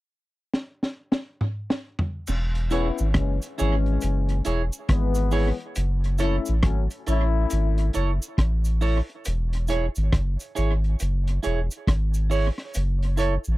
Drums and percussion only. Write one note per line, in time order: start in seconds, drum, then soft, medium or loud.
0.54 snare medium
0.83 snare medium
1.12 snare medium
1.41 mid tom medium
1.70 snare medium
1.99 floor tom medium
2.27 crash medium
2.27 cabasa medium
2.55 closed hi-hat medium
2.71 closed hi-hat medium
2.71 cabasa soft
2.98 cabasa medium
3.14 kick loud
3.14 cross-stick loud
3.14 closed hi-hat medium
3.42 closed hi-hat medium
3.42 cabasa medium
3.58 closed hi-hat medium
3.58 cabasa medium
3.86 closed hi-hat soft
4.01 closed hi-hat medium
4.01 cabasa medium
4.29 closed hi-hat medium
4.45 closed hi-hat medium
4.45 cabasa medium
4.73 cabasa medium
4.89 kick loud
4.89 cross-stick loud
4.89 closed hi-hat medium
5.15 closed hi-hat soft
5.15 cabasa medium
5.31 open hi-hat medium
5.31 cabasa soft
5.60 closed hi-hat soft
5.75 closed hi-hat loud
5.75 cabasa medium
6.04 closed hi-hat medium
6.18 closed hi-hat medium
6.18 cabasa soft
6.46 closed hi-hat soft
6.46 cabasa medium
6.63 kick loud
6.63 cross-stick loud
6.63 closed hi-hat medium
6.90 closed hi-hat medium
6.90 cabasa medium
7.06 closed hi-hat medium
7.06 cabasa medium
7.50 closed hi-hat medium
7.50 cabasa medium
7.78 closed hi-hat soft
7.93 closed hi-hat medium
7.93 cabasa medium
8.22 cabasa medium
8.38 kick loud
8.38 cross-stick loud
8.38 closed hi-hat medium
8.65 closed hi-hat soft
8.65 cabasa medium
8.81 open hi-hat medium
8.81 cabasa soft
9.10 closed hi-hat soft
9.25 closed hi-hat medium
9.25 cabasa medium
9.53 closed hi-hat medium
9.68 closed hi-hat medium
9.68 cabasa soft
9.95 closed hi-hat soft
9.95 cabasa medium
10.12 kick loud
10.12 cross-stick loud
10.12 closed hi-hat medium
10.40 closed hi-hat medium
10.40 cabasa medium
10.56 closed hi-hat medium
10.56 cabasa medium
10.84 closed hi-hat soft
10.99 closed hi-hat medium
10.99 cabasa medium
11.27 closed hi-hat medium
11.43 closed hi-hat medium
11.43 cabasa medium
11.71 closed hi-hat soft
11.71 cabasa medium
11.87 kick medium
11.87 cross-stick loud
11.87 closed hi-hat medium
12.14 closed hi-hat soft
12.14 cabasa medium
12.31 open hi-hat medium
12.31 cabasa soft
12.58 cross-stick medium
12.74 closed hi-hat loud
12.74 cabasa medium
13.02 closed hi-hat medium
13.17 closed hi-hat medium
13.17 cabasa soft
13.44 cabasa medium